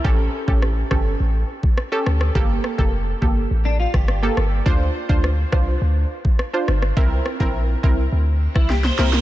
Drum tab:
SD |----r-r-----r-rr|--r--------rr-r-|----r-r-----r-rr|--r--------roooo|
BD |o--o--o----o----|o--o--o----o----|o--o--o----o----|o--o--o----o----|